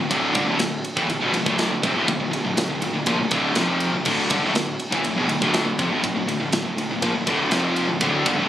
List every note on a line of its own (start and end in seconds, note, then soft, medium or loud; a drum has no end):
0.00 0.10 A2 medium
0.10 0.33 D1 loud
0.10 0.34 D2 loud
0.10 0.34 A2 loud
0.10 0.34 D3 loud
0.10 kick loud
0.10 ride loud
0.35 0.46 G1 medium
0.35 0.47 G2 loud
0.35 0.47 D3 loud
0.35 kick loud
0.35 ride medium
0.47 0.59 D1 loud
0.47 0.59 D2 loud
0.47 0.59 A2 loud
0.59 0.83 D1 medium
0.59 0.80 D2 medium
0.59 0.80 A2 medium
0.59 snare loud
0.59 ride loud
0.85 ride medium
0.97 1.08 A1 loud
0.97 1.08 A2 loud
0.97 1.08 E3 loud
0.97 kick loud
1.09 1.20 D1 medium
1.09 1.21 D2 medium
1.09 1.21 A2 medium
1.09 ride loud
1.21 1.33 E1 loud
1.21 1.33 E2 medium
1.21 1.34 B2 loud
1.33 1.45 D1 medium
1.33 1.47 D2 medium
1.33 1.47 A2 medium
1.33 ride medium
1.46 1.69 D1 loud
1.46 1.71 D2 loud
1.46 1.71 A2 loud
1.46 1.72 D3 loud
1.46 kick loud
1.58 snare loud
1.58 ride medium
1.69 1.82 D1 medium
1.69 1.84 D2 medium
1.69 1.84 A2 medium
1.83 1.94 F1 loud
1.83 1.95 F2 loud
1.83 1.96 C3 loud
1.83 kick loud
1.83 ride medium
1.95 2.07 D1 loud
1.95 2.07 D2 medium
1.95 2.07 A2 loud
2.08 2.18 D1 medium
2.08 2.19 D2 medium
2.08 2.19 A2 medium
2.08 kick loud
2.08 ride loud
2.19 2.31 D1 medium
2.19 2.30 D2 medium
2.19 2.30 A2 medium
2.31 2.43 D1 medium
2.31 2.43 D2 medium
2.31 2.43 A2 medium
2.31 ride medium
2.44 2.56 D1 medium
2.44 2.55 D2 medium
2.44 2.55 A2 medium
2.56 2.68 D1 medium
2.56 2.68 D2 medium
2.56 2.69 A2 medium
2.56 snare loud
2.56 ride loud
2.69 2.79 D1 medium
2.69 2.82 D2 medium
2.69 2.82 A2 medium
2.80 2.92 D1 medium
2.80 2.94 D2 medium
2.80 2.95 A2 medium
2.80 ride medium
2.93 3.05 D1 medium
2.93 3.07 D2 medium
2.93 3.07 A2 medium
3.06 3.17 A#1 loud
3.06 3.19 A#2 medium
3.06 3.19 F3 medium
3.06 kick loud
3.06 ride loud
3.18 3.30 D1 medium
3.18 3.31 D2 medium
3.18 3.31 A2 medium
3.31 3.54 D1 medium
3.31 3.56 D2 medium
3.31 3.56 A2 loud
3.31 3.56 D3 loud
3.31 kick loud
3.31 ride medium
3.55 3.90 F1 medium
3.55 3.93 F2 loud
3.55 3.93 C3 medium
3.55 3.93 F3 loud
3.55 snare loud
3.55 ride loud
3.80 ride medium
3.92 4.04 D1 medium
3.92 4.05 D2 medium
3.92 4.05 A2 medium
4.05 4.29 D1 medium
4.05 4.30 D2 medium
4.05 4.30 A2 loud
4.05 4.30 D3 loud
4.05 kick loud
4.05 crash loud
4.30 4.42 G1 medium
4.30 4.42 G2 loud
4.30 4.42 D3 loud
4.30 kick loud
4.30 ride medium
4.42 4.54 D1 medium
4.42 4.53 D2 medium
4.42 4.54 A2 loud
4.54 4.78 D1 medium
4.54 4.75 D2 medium
4.54 4.75 A2 medium
4.54 snare loud
4.54 ride loud
4.80 ride medium
4.92 5.03 A1 loud
4.92 5.04 A2 medium
4.92 5.04 E3 loud
4.92 kick loud
5.04 5.16 D1 medium
5.04 5.16 D2 medium
5.04 5.17 A2 medium
5.04 ride loud
5.16 5.28 E1 loud
5.16 5.28 E2 medium
5.16 5.29 B2 medium
5.29 5.41 D1 medium
5.29 5.41 D2 medium
5.29 5.41 A2 medium
5.29 ride medium
5.42 5.65 D1 loud
5.42 5.66 D2 medium
5.42 5.66 A2 loud
5.42 5.66 D3 loud
5.42 kick loud
5.54 snare loud
5.54 ride loud
5.66 5.78 D1 medium
5.66 5.78 D2 medium
5.66 5.79 A2 medium
5.78 5.89 F1 loud
5.78 5.90 F2 loud
5.78 5.91 C3 loud
5.78 kick loud
5.78 ride medium
5.90 6.02 D1 loud
5.90 6.01 D2 medium
5.90 6.03 A2 loud
6.02 6.13 D1 medium
6.02 6.14 D2 medium
6.02 6.14 A2 medium
6.02 kick loud
6.02 ride loud
6.13 6.25 D1 medium
6.13 6.26 D2 medium
6.13 6.27 A2 medium
6.26 6.38 D1 medium
6.26 6.39 D2 medium
6.26 6.40 A2 medium
6.26 ride medium
6.39 6.51 D1 medium
6.39 6.52 D2 medium
6.39 6.52 A2 medium
6.51 6.64 D1 medium
6.51 6.64 D2 medium
6.51 6.64 A2 medium
6.51 snare loud
6.51 ride loud
6.64 6.76 D1 medium
6.64 6.75 D2 medium
6.64 6.76 A2 medium
6.77 6.89 D1 medium
6.77 6.90 D2 medium
6.77 6.90 A2 medium
6.77 ride medium
6.90 7.01 D1 medium
6.90 7.01 D2 medium
6.90 7.02 A2 medium
7.02 7.14 A#1 loud
7.02 7.14 A#2 loud
7.02 7.14 F3 loud
7.02 kick loud
7.02 ride loud
7.14 7.26 D1 medium
7.14 7.25 D2 medium
7.14 7.26 A2 medium
7.26 7.50 D1 medium
7.26 7.50 D2 medium
7.26 7.51 A2 loud
7.26 7.51 D3 loud
7.26 kick loud
7.26 ride medium
7.50 7.86 F1 loud
7.50 7.88 F2 loud
7.50 7.88 C3 medium
7.50 7.88 F3 loud
7.50 snare loud
7.50 ride loud
7.76 ride medium
7.89 8.00 D1 medium
7.89 8.00 D2 medium
7.89 8.00 A2 medium
8.01 8.24 D1 loud
8.01 8.26 D2 loud
8.01 8.26 A2 loud
8.01 8.25 D3 loud
8.01 kick loud
8.01 ride loud
8.25 8.36 G1 medium
8.25 8.38 G2 loud
8.25 8.38 D3 loud
8.25 kick loud
8.25 ride medium
8.37 8.49 D1 loud
8.37 8.49 D2 medium
8.37 8.49 A2 loud